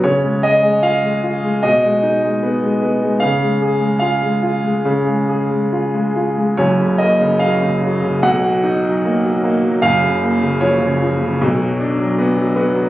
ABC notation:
X:1
M:4/4
L:1/16
Q:1/4=75
K:F#
V:1 name="Grand piano"
c2 d2 e4 d6 z2 | e4 e8- e2 z2 | c2 d2 e4 f6 z2 | e4 c8- c2 z2 |]
V:2 name="Grand piano" clef=bass
C, G, G G, E G, E G, B,, G, D G, B, G, B, G, | C, G, G G, E G, E G, C, G, G G, E G, E G, | [F,,,F,,] C, A, C, F, C, F, C, [B,,,B,,] F, D F, A, F, A, F, | [F,,,F,,] C, A, C, E, C, E, C, [B,,,B,,] F, =D F, B, F, B, F, |]